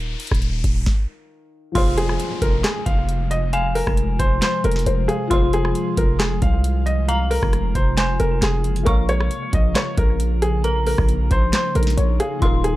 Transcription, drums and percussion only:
0.20 closed hi-hat, open hi-hat
0.27 closed hi-hat
0.31 kick, cross-stick, closed hi-hat
0.42 closed hi-hat
0.64 kick, closed hi-hat
0.86 kick, snare
1.75 kick, closed hi-hat, crash
1.98 closed hi-hat
2.09 cross-stick
2.20 closed hi-hat
2.42 kick, closed hi-hat
2.64 snare, clap, closed hi-hat
2.86 kick, closed hi-hat
3.09 closed hi-hat
3.31 closed hi-hat
3.53 closed hi-hat
3.75 open hi-hat
3.87 kick, cross-stick
3.97 closed hi-hat
4.20 kick, closed hi-hat
4.42 snare, clap, closed hi-hat
4.64 closed hi-hat
4.72 closed hi-hat
4.76 snare, closed hi-hat
4.86 closed hi-hat
5.09 closed hi-hat
5.31 kick, closed hi-hat
5.53 closed hi-hat
5.65 cross-stick
5.75 closed hi-hat
5.97 kick, closed hi-hat
6.20 snare, clap, closed hi-hat
6.42 kick, closed hi-hat
6.64 closed hi-hat
6.87 closed hi-hat
7.09 closed hi-hat
7.31 open hi-hat
7.43 kick, cross-stick
7.53 cross-stick, closed hi-hat
7.75 kick, closed hi-hat
7.97 snare, clap, closed hi-hat
8.20 closed hi-hat
8.42 snare, clap, closed hi-hat
8.64 closed hi-hat
8.76 closed hi-hat
8.86 kick, closed hi-hat
9.09 closed hi-hat
9.20 cross-stick
9.31 closed hi-hat
9.53 kick, closed hi-hat
9.75 snare, clap, closed hi-hat
9.97 kick, closed hi-hat
10.20 closed hi-hat
10.42 closed hi-hat
10.64 closed hi-hat
10.87 open hi-hat
10.98 kick, cross-stick
11.09 closed hi-hat
11.31 kick, closed hi-hat
11.53 snare, clap, closed hi-hat
11.75 closed hi-hat
11.83 closed hi-hat
11.87 snare, closed hi-hat
11.98 closed hi-hat
12.20 closed hi-hat
12.42 kick, closed hi-hat
12.64 closed hi-hat

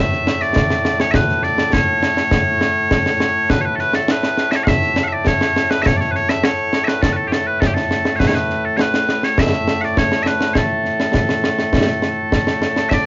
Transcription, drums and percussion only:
0.12 snare
0.27 snare
0.42 snare
0.56 concert bass drum, snare
0.70 snare
0.85 snare
1.00 snare
1.14 concert bass drum, snare
1.29 snare
1.43 snare
1.58 snare
1.73 concert bass drum, snare
2.03 snare
2.17 snare
2.31 concert bass drum, snare
2.61 snare
2.91 concert bass drum, snare
3.06 snare
3.20 snare
3.50 concert bass drum, snare
3.79 snare
3.94 snare
4.08 snare
4.23 snare
4.38 snare
4.52 snare
4.67 concert bass drum, snare
4.82 snare
4.96 snare
5.27 concert bass drum, snare
5.41 snare
5.56 snare
5.71 snare
5.86 concert bass drum, snare
6.01 snare
6.15 snare
6.29 snare
6.43 snare
6.73 snare
6.88 snare
7.03 concert bass drum, snare
7.32 snare
7.62 concert bass drum, snare
7.76 snare
7.91 snare
8.05 snare
8.20 concert bass drum, snare
8.50 snare
8.79 snare
8.94 snare
9.09 snare
9.23 snare
9.38 concert bass drum, snare
9.53 snare
9.68 snare
9.83 snare
9.97 concert bass drum, snare
10.12 snare
10.26 snare
10.41 snare
10.55 concert bass drum, snare
10.85 snare
11.00 snare
11.14 concert bass drum, snare
11.29 snare
11.44 snare
11.59 snare
11.73 concert bass drum, snare
12.02 snare
12.32 concert bass drum, snare
12.47 snare
12.62 snare
12.76 snare
12.91 concert bass drum, snare

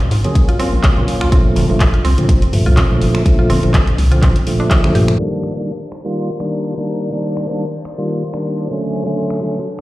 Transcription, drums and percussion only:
0.00 closed hi-hat, low conga
0.11 open hi-hat
0.24 closed hi-hat, high conga
0.35 kick, closed hi-hat
0.49 closed hi-hat
0.60 open hi-hat
0.84 kick, clap, closed hi-hat
0.97 high conga, low conga
1.08 open hi-hat
1.21 finger snap
1.32 kick, closed hi-hat
1.56 open hi-hat, high conga
1.69 low conga
1.80 kick, clap, closed hi-hat
1.94 closed hi-hat
2.05 open hi-hat
2.18 closed hi-hat, high conga
2.29 kick, closed hi-hat
2.42 closed hi-hat
2.53 open hi-hat
2.77 kick, clap, closed hi-hat
2.90 high conga, low conga
3.01 open hi-hat
3.15 finger snap
3.26 kick, closed hi-hat
3.50 open hi-hat, high conga
3.63 closed hi-hat, low conga
3.74 kick, clap, closed hi-hat
3.87 closed hi-hat, low conga
3.98 open hi-hat
4.11 closed hi-hat, high conga
4.22 kick, clap, closed hi-hat
4.36 closed hi-hat
4.47 open hi-hat
4.71 kick, clap, closed hi-hat
4.84 finger snap, closed hi-hat, high conga, low conga
4.95 open hi-hat
5.08 finger snap, closed hi-hat
5.19 closed hi-hat, crash
5.33 closed hi-hat
5.43 finger snap, shaker
5.57 closed hi-hat
5.68 closed hi-hat, shaker
5.81 shaker
5.92 finger snap, shaker
6.05 closed hi-hat
6.16 closed hi-hat, shaker
6.40 finger snap, closed hi-hat, shaker
6.53 closed hi-hat, shaker
6.64 closed hi-hat, shaker
6.89 shaker
7.02 closed hi-hat, shaker
7.13 closed hi-hat, shaker
7.26 closed hi-hat, shaker
7.37 finger snap, closed hi-hat, shaker
7.50 closed hi-hat, shaker
7.61 closed hi-hat, shaker
7.74 shaker
7.85 finger snap, shaker
7.99 closed hi-hat, shaker
8.10 closed hi-hat, shaker
8.34 finger snap, closed hi-hat, shaker
8.47 closed hi-hat, shaker
8.58 closed hi-hat, shaker
8.82 shaker
8.95 closed hi-hat, shaker
9.06 closed hi-hat, shaker
9.19 closed hi-hat, shaker
9.30 finger snap, closed hi-hat, shaker
9.44 closed hi-hat, shaker
9.55 closed hi-hat, shaker
9.68 shaker

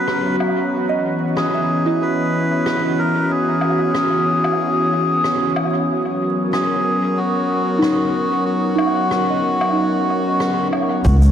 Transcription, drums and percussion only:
0.08 cross-stick
0.40 low woodblock
1.37 cross-stick
2.66 cross-stick
3.61 low woodblock
3.95 cross-stick
4.44 low woodblock
5.24 cross-stick
5.56 low woodblock
6.53 cross-stick
7.82 cross-stick
8.78 low woodblock
9.11 cross-stick
9.61 low woodblock
10.40 cross-stick
10.73 low woodblock
11.05 kick, shaker
11.22 shaker

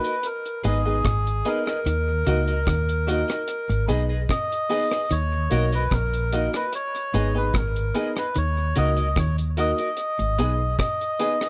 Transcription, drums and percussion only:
0.05 closed hi-hat
0.23 closed hi-hat
0.46 closed hi-hat
0.64 closed hi-hat
1.05 kick, cross-stick, closed hi-hat
1.27 closed hi-hat
1.45 closed hi-hat
1.67 cross-stick
1.86 closed hi-hat
2.27 closed hi-hat
2.48 closed hi-hat
2.67 kick, cross-stick, closed hi-hat
2.89 closed hi-hat
3.08 closed hi-hat
3.29 cross-stick, closed hi-hat
3.48 closed hi-hat
3.70 closed hi-hat
3.89 closed hi-hat
4.29 kick, cross-stick, closed hi-hat
4.52 closed hi-hat
4.70 open hi-hat
4.91 cross-stick
5.11 closed hi-hat
5.51 closed hi-hat
5.72 closed hi-hat
5.91 kick, cross-stick, closed hi-hat
6.13 closed hi-hat
6.33 closed hi-hat
6.53 cross-stick, closed hi-hat
6.73 closed hi-hat
6.95 closed hi-hat
7.14 closed hi-hat
7.54 kick, cross-stick, closed hi-hat
7.76 closed hi-hat
7.95 closed hi-hat
8.17 cross-stick
8.35 closed hi-hat
8.76 closed hi-hat
8.97 closed hi-hat
9.16 kick, cross-stick, closed hi-hat
9.38 closed hi-hat
9.57 closed hi-hat
9.78 closed hi-hat
9.97 closed hi-hat
10.19 closed hi-hat
10.39 closed hi-hat
10.79 kick, cross-stick, closed hi-hat
11.01 closed hi-hat
11.19 closed hi-hat
11.41 cross-stick

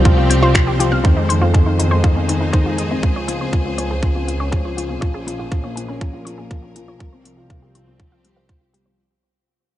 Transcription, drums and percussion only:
0.05 kick
0.31 closed hi-hat
0.55 finger snap, kick
0.80 closed hi-hat
1.05 kick
1.30 closed hi-hat
1.54 kick
1.80 closed hi-hat
2.04 kick
2.29 closed hi-hat
2.53 kick
2.78 closed hi-hat
3.03 kick
3.28 closed hi-hat
3.53 kick
3.78 closed hi-hat
4.03 kick
4.28 closed hi-hat
4.52 kick
4.78 closed hi-hat
5.02 kick
5.28 closed hi-hat
5.52 kick
5.77 closed hi-hat
6.01 kick
6.27 closed hi-hat
6.51 kick
6.76 closed hi-hat
7.00 kick
7.25 closed hi-hat
7.50 kick
7.75 closed hi-hat
8.00 kick
8.25 closed hi-hat
8.49 kick
8.74 closed hi-hat

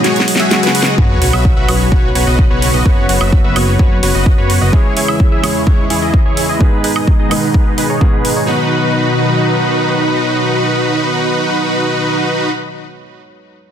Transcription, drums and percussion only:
0.04 snare, closed hi-hat
0.16 snare, closed hi-hat
0.28 open hi-hat
0.36 snare, closed hi-hat
0.51 snare, closed hi-hat
0.63 snare, closed hi-hat
0.75 open hi-hat
0.83 snare, closed hi-hat
0.98 kick
1.22 open hi-hat
1.33 high woodblock
1.45 kick
1.69 open hi-hat, high woodblock
1.92 kick
2.15 open hi-hat
2.39 kick
2.62 open hi-hat
2.86 kick
3.09 open hi-hat
3.21 high woodblock
3.33 kick
3.56 open hi-hat, high woodblock
3.79 kick
4.03 open hi-hat
4.26 kick
4.50 open hi-hat
4.73 kick
4.97 open hi-hat
5.08 high woodblock
5.20 kick
5.44 open hi-hat, high woodblock
5.67 kick
5.90 open hi-hat
6.14 kick
6.37 open hi-hat
6.61 kick
6.84 open hi-hat
6.96 high woodblock
7.08 kick
7.31 open hi-hat, high woodblock
7.54 kick
7.78 open hi-hat
8.01 kick
8.25 open hi-hat

